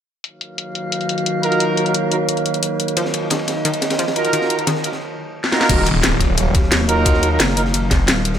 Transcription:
0.24 4.97 D#3 medium
0.24 4.97 F#3 medium
0.24 4.97 A#3 medium
0.24 2.94 F5 medium
0.24 closed hi-hat medium
0.41 closed hi-hat medium
0.58 closed hi-hat medium
0.75 closed hi-hat medium
0.92 closed hi-hat medium
1.01 closed hi-hat soft
1.09 closed hi-hat medium
1.18 closed hi-hat soft
1.26 closed hi-hat medium
1.43 1.84 D#4 medium
1.43 1.84 F4 medium
1.43 1.84 F#4 medium
1.43 1.84 A#4 loud
1.43 closed hi-hat medium
1.52 closed hi-hat soft
1.60 closed hi-hat medium
1.77 closed hi-hat medium
1.86 1.94 D#4 medium
1.86 1.94 F4 medium
1.86 1.94 F#4 medium
1.86 1.94 A#4 medium
1.86 closed hi-hat soft
1.94 closed hi-hat loud
2.11 2.16 D#4 medium
2.11 2.16 F4 medium
2.11 2.16 F#4 medium
2.11 2.16 A#4 medium
2.11 closed hi-hat medium
2.29 closed hi-hat medium
2.37 closed hi-hat soft
2.46 closed hi-hat medium
2.54 closed hi-hat soft
2.63 closed hi-hat medium
2.80 closed hi-hat medium
2.88 closed hi-hat soft
2.97 3.08 F3 loud
2.97 4.99 D#4 medium
2.97 closed hi-hat medium
2.97 ride medium
3.05 snare soft
3.14 closed hi-hat medium
3.14 ride medium
3.30 3.35 D#3 medium
3.30 snare loud
3.30 closed hi-hat loud
3.30 ride medium
3.39 ride soft
3.48 snare medium
3.48 closed hi-hat medium
3.48 ride medium
3.65 3.72 D#3 loud
3.65 closed hi-hat medium
3.65 ride medium
3.74 closed hi-hat soft
3.82 snare loud
3.82 closed hi-hat medium
3.82 ride medium
3.90 snare loud
3.90 closed hi-hat soft
3.90 ride medium
3.98 4.10 F3 loud
3.98 snare loud
3.98 closed hi-hat medium
3.98 ride medium
4.08 snare loud
4.08 ride medium
4.16 4.57 D#4 medium
4.16 4.57 F4 medium
4.16 4.57 F#4 medium
4.16 4.57 A#4 loud
4.16 closed hi-hat medium
4.16 ride medium
4.25 closed hi-hat soft
4.33 4.38 D#3 medium
4.33 closed hi-hat medium
4.33 ride medium
4.41 snare soft
4.50 closed hi-hat medium
4.50 ride medium
4.59 4.66 D#4 medium
4.59 4.66 F4 medium
4.59 4.66 F#4 medium
4.59 4.66 A#4 medium
4.59 closed hi-hat soft
4.67 4.75 D#3 loud
4.67 snare loud
4.67 closed hi-hat medium
4.67 ride medium
4.76 snare soft
4.84 4.89 D#4 medium
4.84 4.89 F4 medium
4.84 4.89 F#4 medium
4.84 4.89 A#4 medium
4.84 closed hi-hat medium
4.84 ride medium
4.92 snare soft
5.44 snare soft
5.52 5.87 D#4 medium
5.52 5.86 F4 medium
5.52 5.87 F#4 medium
5.52 5.87 A#4 loud
5.52 snare medium
5.61 snare medium
5.69 6.53 D#1 loud
5.69 8.39 D#3 medium
5.69 8.39 F#3 medium
5.69 8.39 A#3 medium
5.69 8.39 F5 medium
5.69 kick loud
5.69 closed hi-hat loud
5.69 ride medium
5.69 crash loud
5.69 impact medium
5.78 snare medium
5.86 closed hi-hat medium
5.86 ride medium
6.03 snare loud
6.03 closed hi-hat loud
6.03 ride medium
6.12 ride soft
6.20 kick medium
6.20 snare medium
6.20 closed hi-hat medium
6.20 ride medium
6.37 closed hi-hat loud
6.37 ride loud
6.54 7.39 D#2 loud
6.54 kick loud
6.54 snare medium
6.54 closed hi-hat medium
6.54 ride medium
6.63 snare soft
6.72 snare loud
6.72 closed hi-hat loud
6.72 ride medium
6.80 snare soft
6.89 7.29 D#4 loud
6.89 7.29 F4 medium
6.89 7.29 F#4 medium
6.89 7.29 A#4 loud
6.89 closed hi-hat medium
6.89 ride medium
7.05 kick loud
7.05 closed hi-hat loud
7.05 ride loud
7.14 snare soft
7.23 closed hi-hat medium
7.23 ride medium
7.31 7.39 D#4 medium
7.31 7.39 F4 medium
7.31 7.39 F#4 medium
7.31 7.39 A#4 medium
7.40 7.90 F#1 medium
7.40 snare loud
7.40 closed hi-hat loud
7.40 ride medium
7.48 snare medium
7.57 7.62 D#4 medium
7.57 7.62 F4 medium
7.57 7.62 F#4 medium
7.57 7.62 A#4 medium
7.57 open hi-hat medium
7.57 ride medium
7.65 snare soft
7.74 closed hi-hat loud
7.74 ride medium
7.91 8.07 F1 loud
7.91 kick loud
7.91 snare loud
7.91 snare soft
7.91 closed hi-hat medium
7.91 ride medium
8.08 8.39 D#1 loud
8.08 snare loud
8.08 closed hi-hat loud
8.08 ride medium
8.25 closed hi-hat medium
8.25 ride medium
8.34 snare medium

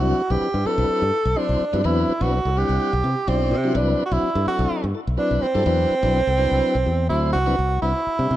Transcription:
0.00 0.11 C2 medium
0.00 0.22 F#3 medium
0.00 0.22 C4 medium
0.00 0.22 D4 medium
0.00 0.22 E4 medium
0.00 0.22 F#4 loud
0.00 0.32 F#4 medium
0.30 0.39 B1 medium
0.30 0.48 F#3 medium
0.30 0.48 C4 medium
0.30 0.49 D4 medium
0.30 0.49 E4 medium
0.30 0.68 G4 medium
0.30 0.49 B4 medium
0.54 0.62 G2 medium
0.54 0.60 E4 soft
0.54 0.60 C5 soft
0.65 1.03 F#3 medium
0.65 1.04 C4 medium
0.65 1.04 D4 medium
0.65 1.04 E4 medium
0.65 1.40 A4 loud
0.65 1.04 B4 medium
0.65 muted fingered electric bass stroke soft
0.78 0.86 B1 medium
0.89 muted fingered electric bass stroke soft
1.02 1.10 G2 medium
1.13 1.19 E4 soft
1.13 1.19 B4 soft
1.25 1.34 B1 medium
1.36 1.65 F#3 medium
1.36 1.65 C4 medium
1.36 1.65 D4 medium
1.36 1.87 D4 medium
1.36 1.65 E4 medium
1.36 1.65 C5 medium
1.49 1.58 B1 medium
1.60 muted fingered electric bass stroke soft
1.73 1.82 G2 medium
1.73 1.82 F#3 medium
1.73 1.82 C4 medium
1.73 1.82 D4 medium
1.73 1.82 E4 medium
1.73 1.82 B4 loud
1.84 2.03 E2 medium
1.84 2.13 F#3 loud
1.84 2.13 C4 medium
1.84 2.13 D4 medium
1.84 2.13 E4 medium
1.84 2.24 E4 medium
1.84 2.13 B4 loud
2.08 muted fingered electric bass stroke soft
2.20 2.39 B1 loud
2.20 2.39 F#3 medium
2.20 2.39 C4 medium
2.20 2.39 D4 medium
2.20 2.39 E4 medium
2.20 2.59 F#4 medium
2.20 2.39 B4 medium
2.45 2.63 C2 medium
2.45 2.50 E4 soft
2.45 2.51 A4 soft
2.57 2.95 G3 medium
2.57 2.95 C4 medium
2.57 2.95 D4 medium
2.57 2.95 E4 medium
2.57 3.30 G4 loud
2.57 2.95 F#5 medium
2.69 2.77 C2 medium
2.93 3.01 B1 medium
3.03 3.14 C3 medium
3.03 3.10 E4 soft
3.03 3.10 B4 soft
3.27 3.53 B1 loud
3.27 3.56 F#3 medium
3.27 3.56 C4 medium
3.27 3.76 C4 medium
3.27 3.56 D4 medium
3.27 3.56 E4 medium
3.27 3.56 D5 medium
3.51 3.76 C3 medium
3.64 3.73 F#3 medium
3.64 3.73 C4 medium
3.64 3.73 D4 medium
3.64 3.73 E4 medium
3.64 3.73 F#4 loud
3.75 3.93 C2 loud
3.75 4.03 F#3 medium
3.75 4.04 C4 medium
3.75 4.03 D4 medium
3.75 4.04 E4 medium
3.75 4.04 B4 loud
4.05 4.14 F#4 medium
4.11 4.20 B1 medium
4.11 4.30 F#3 medium
4.11 4.30 C4 medium
4.11 4.30 D4 medium
4.11 4.30 E4 medium
4.11 4.47 E4 medium
4.11 4.30 F#4 medium
4.23 muted fingered electric bass stroke soft
4.35 4.44 G2 loud
4.35 4.41 E4 soft
4.35 4.41 A4 soft
4.46 4.85 F#3 medium
4.46 4.85 C4 medium
4.46 4.85 D4 medium
4.46 4.85 E4 medium
4.46 4.89 F#4 medium
4.46 4.85 A4 medium
4.46 muted fingered electric bass stroke soft
4.59 4.68 B1 medium
4.84 4.92 G2 medium
4.95 5.01 E4 soft
4.95 5.01 A4 soft
5.07 5.16 B1 medium
5.17 5.46 F#3 medium
5.17 5.47 C4 medium
5.17 5.47 D4 medium
5.17 5.43 D4 medium
5.17 5.47 E4 medium
5.17 5.47 B4 medium
5.31 5.40 B1 medium
5.42 7.09 C4 loud
5.54 5.64 G2 medium
5.54 5.64 F#3 medium
5.54 5.64 C4 medium
5.54 5.64 D4 medium
5.54 5.64 E4 medium
5.54 5.64 A4 medium
5.66 5.84 E2 medium
5.66 5.95 F#3 medium
5.66 5.95 C4 medium
5.66 5.95 D4 medium
5.66 5.95 E4 medium
5.66 5.95 B4 loud
5.90 muted fingered electric bass stroke soft
6.02 6.21 B1 medium
6.02 6.21 F#3 medium
6.02 6.21 C4 medium
6.02 6.21 D4 medium
6.02 6.21 E4 medium
6.02 6.22 B4 medium
6.27 6.46 C2 medium
6.27 6.33 E4 soft
6.27 6.33 A4 soft
6.37 6.76 F#3 medium
6.37 6.77 C4 medium
6.37 6.77 D4 medium
6.37 6.76 E4 medium
6.37 6.77 B4 medium
6.51 6.60 C2 medium
6.75 6.84 B1 medium
6.86 7.08 E2 medium
6.86 6.92 E4 soft
6.86 6.93 G4 soft
7.09 7.32 D2 medium
7.09 7.38 F#3 medium
7.09 7.39 C4 medium
7.09 7.39 D4 medium
7.09 7.32 E4 medium
7.09 7.39 E4 medium
7.09 7.39 C5 medium
7.33 7.56 C2 medium
7.33 7.78 F#4 loud
7.46 7.56 F#3 loud
7.46 7.56 C4 loud
7.46 7.56 D4 medium
7.46 7.56 E4 medium
7.46 7.56 B4 loud
7.59 7.77 C2 medium
7.82 7.92 C2 medium
7.82 7.93 G3 medium
7.82 7.93 C4 medium
7.82 7.93 D4 medium
7.82 8.37 E4 loud
7.82 7.93 E4 medium
7.82 7.93 B4 medium
7.96 8.01 E4 soft
7.96 8.01 C5 soft
8.07 muted fingered electric bass stroke soft
8.19 8.28 C3 medium
8.19 8.37 G3 medium
8.19 8.37 C4 medium
8.19 8.37 D4 medium
8.19 8.37 E4 medium
8.19 8.37 G4 medium
8.31 8.37 C3 medium

